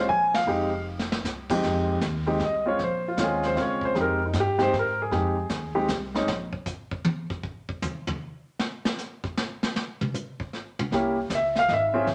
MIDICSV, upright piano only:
0, 0, Header, 1, 2, 480
1, 0, Start_track
1, 0, Key_signature, -4, "minor"
1, 0, Tempo, 386847
1, 581, Time_signature, 3, 2, 24, 8
1, 15073, End_track
2, 0, Start_track
2, 0, Title_t, "Upright piano"
2, 0, Program_c, 0, 0
2, 111, Note_on_c, 0, 80, 103
2, 398, Note_off_c, 0, 80, 0
2, 435, Note_on_c, 0, 77, 80
2, 581, Note_on_c, 0, 56, 59
2, 589, Note_on_c, 0, 63, 58
2, 594, Note_on_c, 0, 60, 51
2, 599, Note_on_c, 0, 67, 66
2, 863, Note_off_c, 0, 56, 0
2, 867, Note_off_c, 0, 63, 0
2, 870, Note_off_c, 0, 60, 0
2, 872, Note_off_c, 0, 67, 0
2, 1027, Note_off_c, 0, 77, 0
2, 1865, Note_on_c, 0, 60, 56
2, 1866, Note_on_c, 0, 41, 62
2, 1868, Note_on_c, 0, 56, 58
2, 1868, Note_on_c, 0, 63, 52
2, 1871, Note_on_c, 0, 67, 67
2, 2475, Note_off_c, 0, 41, 0
2, 2475, Note_off_c, 0, 60, 0
2, 2476, Note_off_c, 0, 56, 0
2, 2476, Note_off_c, 0, 63, 0
2, 2478, Note_off_c, 0, 67, 0
2, 2810, Note_on_c, 0, 60, 58
2, 2815, Note_on_c, 0, 56, 61
2, 2822, Note_on_c, 0, 67, 65
2, 2824, Note_on_c, 0, 63, 56
2, 2964, Note_off_c, 0, 60, 0
2, 2967, Note_off_c, 0, 56, 0
2, 2970, Note_off_c, 0, 67, 0
2, 2971, Note_off_c, 0, 63, 0
2, 3035, Note_on_c, 0, 75, 71
2, 3297, Note_on_c, 0, 60, 55
2, 3300, Note_on_c, 0, 56, 58
2, 3303, Note_on_c, 0, 61, 54
2, 3303, Note_on_c, 0, 65, 65
2, 3314, Note_off_c, 0, 75, 0
2, 3331, Note_on_c, 0, 73, 78
2, 3447, Note_off_c, 0, 60, 0
2, 3449, Note_off_c, 0, 56, 0
2, 3451, Note_off_c, 0, 61, 0
2, 3451, Note_off_c, 0, 65, 0
2, 3477, Note_off_c, 0, 73, 0
2, 3518, Note_on_c, 0, 72, 76
2, 3797, Note_off_c, 0, 72, 0
2, 3824, Note_on_c, 0, 65, 60
2, 3944, Note_off_c, 0, 65, 0
2, 3949, Note_on_c, 0, 56, 58
2, 3960, Note_on_c, 0, 60, 53
2, 3962, Note_on_c, 0, 65, 69
2, 3964, Note_on_c, 0, 61, 55
2, 4015, Note_on_c, 0, 68, 74
2, 4286, Note_off_c, 0, 68, 0
2, 4296, Note_on_c, 0, 72, 84
2, 4395, Note_off_c, 0, 60, 0
2, 4403, Note_off_c, 0, 56, 0
2, 4406, Note_off_c, 0, 61, 0
2, 4409, Note_off_c, 0, 65, 0
2, 4414, Note_on_c, 0, 60, 56
2, 4422, Note_on_c, 0, 56, 59
2, 4425, Note_on_c, 0, 61, 52
2, 4427, Note_on_c, 0, 65, 61
2, 4440, Note_off_c, 0, 72, 0
2, 4488, Note_on_c, 0, 73, 83
2, 4762, Note_off_c, 0, 73, 0
2, 4779, Note_on_c, 0, 72, 86
2, 4878, Note_off_c, 0, 56, 0
2, 4883, Note_off_c, 0, 60, 0
2, 4896, Note_on_c, 0, 56, 58
2, 4902, Note_on_c, 0, 60, 52
2, 4906, Note_off_c, 0, 61, 0
2, 4906, Note_on_c, 0, 63, 52
2, 4907, Note_off_c, 0, 65, 0
2, 4913, Note_on_c, 0, 67, 61
2, 4922, Note_off_c, 0, 72, 0
2, 4972, Note_on_c, 0, 70, 74
2, 5184, Note_off_c, 0, 56, 0
2, 5187, Note_off_c, 0, 60, 0
2, 5189, Note_off_c, 0, 63, 0
2, 5192, Note_off_c, 0, 67, 0
2, 5245, Note_off_c, 0, 70, 0
2, 5282, Note_on_c, 0, 63, 47
2, 5414, Note_off_c, 0, 63, 0
2, 5462, Note_on_c, 0, 67, 83
2, 5673, Note_off_c, 0, 67, 0
2, 5691, Note_on_c, 0, 56, 65
2, 5691, Note_on_c, 0, 60, 65
2, 5692, Note_on_c, 0, 67, 81
2, 5693, Note_on_c, 0, 63, 56
2, 5741, Note_on_c, 0, 72, 100
2, 5846, Note_off_c, 0, 56, 0
2, 5846, Note_off_c, 0, 60, 0
2, 5847, Note_off_c, 0, 63, 0
2, 5847, Note_off_c, 0, 67, 0
2, 5883, Note_off_c, 0, 72, 0
2, 5945, Note_on_c, 0, 70, 73
2, 6212, Note_off_c, 0, 70, 0
2, 6229, Note_on_c, 0, 68, 72
2, 6346, Note_on_c, 0, 60, 50
2, 6348, Note_on_c, 0, 63, 50
2, 6353, Note_on_c, 0, 56, 55
2, 6357, Note_on_c, 0, 67, 65
2, 6629, Note_off_c, 0, 60, 0
2, 6631, Note_off_c, 0, 63, 0
2, 6633, Note_off_c, 0, 56, 0
2, 6635, Note_off_c, 0, 67, 0
2, 7134, Note_on_c, 0, 67, 74
2, 7135, Note_on_c, 0, 56, 63
2, 7139, Note_on_c, 0, 60, 57
2, 7140, Note_on_c, 0, 63, 57
2, 7283, Note_off_c, 0, 68, 0
2, 7289, Note_off_c, 0, 56, 0
2, 7289, Note_off_c, 0, 67, 0
2, 7291, Note_off_c, 0, 60, 0
2, 7292, Note_off_c, 0, 63, 0
2, 7625, Note_on_c, 0, 60, 55
2, 7630, Note_on_c, 0, 56, 58
2, 7639, Note_on_c, 0, 63, 70
2, 7641, Note_on_c, 0, 61, 57
2, 7774, Note_off_c, 0, 60, 0
2, 7776, Note_off_c, 0, 56, 0
2, 7781, Note_off_c, 0, 63, 0
2, 7782, Note_off_c, 0, 61, 0
2, 13562, Note_on_c, 0, 58, 58
2, 13563, Note_on_c, 0, 61, 54
2, 13565, Note_on_c, 0, 64, 53
2, 13573, Note_on_c, 0, 67, 67
2, 13836, Note_off_c, 0, 58, 0
2, 13837, Note_off_c, 0, 61, 0
2, 13838, Note_off_c, 0, 64, 0
2, 13842, Note_off_c, 0, 67, 0
2, 14082, Note_on_c, 0, 76, 81
2, 14358, Note_off_c, 0, 76, 0
2, 14379, Note_on_c, 0, 77, 103
2, 14506, Note_on_c, 0, 75, 59
2, 14521, Note_off_c, 0, 77, 0
2, 14536, Note_off_c, 0, 75, 0
2, 14561, Note_on_c, 0, 76, 86
2, 14809, Note_on_c, 0, 61, 68
2, 14813, Note_on_c, 0, 60, 73
2, 14819, Note_on_c, 0, 68, 75
2, 14820, Note_on_c, 0, 65, 63
2, 14963, Note_off_c, 0, 61, 0
2, 14965, Note_off_c, 0, 60, 0
2, 14968, Note_off_c, 0, 65, 0
2, 14968, Note_off_c, 0, 68, 0
2, 14980, Note_off_c, 0, 76, 0
2, 15073, End_track
0, 0, End_of_file